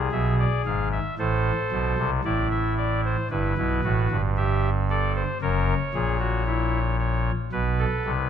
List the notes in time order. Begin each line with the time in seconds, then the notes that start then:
Already playing: G#4
0.12 B1 B2 E5
0.39 D5
0.66 G#1 G#2 F5
0.92 E5
1.19 A1 A2 A4 C5
1.72 B1 B2
1.98 C2 C3
2.24 A1 A2 E4 D5
2.51 E5
2.78 D5
3.05 C5
3.30 G1 G2 E4 B4
3.58 B1 B2 E4
3.84 A1 A2 F#4
4.11 G1 G2
4.37 G4 E5
4.90 A4 D5
5.15 C5
5.42 F#1 F#2 A#4 C#5
5.94 A#1 A#2 G#4
6.20 F#4
6.47 E4
6.99 C#5
7.52 B1 B2 B4
7.79 A4
8.05 C2 C3